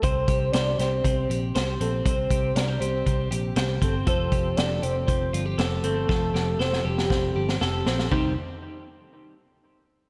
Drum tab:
HH |x-x-x-x-x-x-x-x-|x-x-x-x-x-x-x-x-|x-x-x-x-x-x-x-x-|----------------|
SD |----o-o-----o---|----o-------o---|----o-------o---|o-o-oo-oo--oo-oo|
FT |----------------|----------------|----------------|----------------|
BD |o-o-----o-------|o-o-----o-----o-|o-o-----o-------|o-------o-------|

HH |----------------|
SD |----------------|
FT |o---------------|
BD |o---------------|